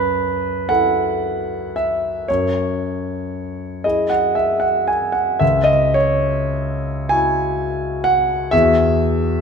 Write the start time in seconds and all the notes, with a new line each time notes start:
Already playing: F#2 B4
0.69 E4 A4 F#5
1.76 E5
2.28 F#2 C#5
3.84 E4 G#4 D#5
4.10 F#5
4.35 E5
4.60 F#5
4.88 G#5
5.12 F#5
5.39 C#2 E5
5.64 D#5
5.94 C#5
7.09 E4 F#4 G#5
8.04 F#5
8.51 E2 F#4 G#4 E5